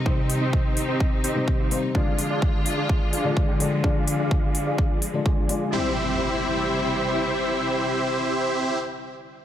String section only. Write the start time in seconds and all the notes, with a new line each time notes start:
Already playing: C3 D#3 D#4
1.95 D3 F3 G#3 F4
5.73 C3 E3 G3 E4